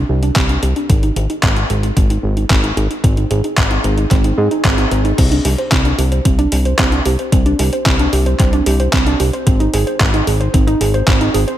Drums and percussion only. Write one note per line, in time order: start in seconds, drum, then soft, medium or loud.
0.23 closed hi-hat soft
0.36 kick loud
0.36 clap loud
0.36 closed hi-hat loud
0.49 closed hi-hat soft
0.63 closed hi-hat medium
0.76 closed hi-hat soft
0.90 kick loud
0.90 closed hi-hat medium
1.03 closed hi-hat soft
1.16 closed hi-hat medium
1.30 closed hi-hat soft
1.43 kick loud
1.43 clap loud
1.43 closed hi-hat medium
1.56 closed hi-hat soft
1.70 closed hi-hat medium
1.83 closed hi-hat soft
1.97 kick loud
1.97 closed hi-hat medium
2.10 closed hi-hat soft
2.37 closed hi-hat soft
2.50 kick loud
2.50 clap loud
2.50 closed hi-hat medium
2.64 closed hi-hat soft
2.77 closed hi-hat medium
2.91 closed hi-hat soft
3.04 kick loud
3.04 closed hi-hat medium
3.17 closed hi-hat soft
3.31 closed hi-hat medium
3.44 closed hi-hat soft
3.57 kick loud
3.57 clap loud
3.57 closed hi-hat medium
3.71 closed hi-hat soft
3.84 closed hi-hat medium
3.98 closed hi-hat soft
4.11 kick loud
4.11 clap soft
4.11 closed hi-hat medium
4.24 closed hi-hat soft
4.51 closed hi-hat soft
4.65 kick loud
4.65 clap loud
4.65 closed hi-hat medium
4.78 closed hi-hat soft
4.91 closed hi-hat medium
5.05 closed hi-hat soft
5.18 kick loud
5.18 closed hi-hat medium
5.18 crash loud
5.32 closed hi-hat soft
5.45 open hi-hat loud
5.58 closed hi-hat soft
5.72 kick loud
5.72 clap loud
5.72 closed hi-hat loud
5.85 closed hi-hat soft
5.99 open hi-hat medium
6.12 closed hi-hat soft
6.25 kick loud
6.25 closed hi-hat loud
6.39 closed hi-hat soft
6.52 open hi-hat loud
6.65 closed hi-hat soft
6.79 kick loud
6.79 clap loud
6.79 closed hi-hat loud
6.92 closed hi-hat soft
7.05 open hi-hat medium
7.19 closed hi-hat soft
7.32 kick loud
7.32 closed hi-hat medium
7.46 closed hi-hat soft
7.59 open hi-hat loud
7.73 closed hi-hat soft
7.86 kick loud
7.86 clap loud
7.86 closed hi-hat loud
7.99 closed hi-hat soft
8.13 open hi-hat medium
8.26 closed hi-hat soft
8.39 kick loud
8.39 clap soft
8.39 closed hi-hat loud
8.53 closed hi-hat soft
8.66 open hi-hat loud
8.80 closed hi-hat soft
8.93 kick loud
8.93 clap loud
8.93 closed hi-hat loud
9.07 closed hi-hat soft
9.20 open hi-hat medium
9.33 closed hi-hat soft
9.47 kick loud
9.47 closed hi-hat medium
9.60 closed hi-hat soft
9.74 open hi-hat loud
9.87 closed hi-hat soft
10.00 kick loud
10.00 clap loud
10.00 closed hi-hat loud
10.14 closed hi-hat soft
10.27 open hi-hat medium
10.41 closed hi-hat soft
10.54 kick loud
10.54 closed hi-hat medium
10.68 closed hi-hat soft
10.81 open hi-hat loud
10.94 closed hi-hat soft
11.07 kick loud
11.07 clap loud
11.07 closed hi-hat loud
11.21 closed hi-hat soft
11.34 open hi-hat medium
11.48 closed hi-hat soft